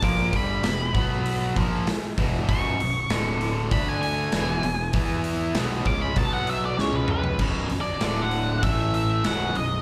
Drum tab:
CC |----------------|----------------|----------------|x---------------|
HH |o-o-o-o-o-o-o-o-|o-o-o-o-o-o-o-o-|o-o-o-o-o-o-----|--o-o-o-o-o-o-o-|
SD |----o-------o---|----o-------o---|----o-------o---|----o-------o---|
T1 |----------------|----------------|-------------o--|----------------|
T2 |----------------|----------------|--------------o-|----------------|
FT |----------------|----------------|---------------o|----------------|
BD |o-o---o---o---o-|o-------o-------|o-----o-o-------|o-------o-------|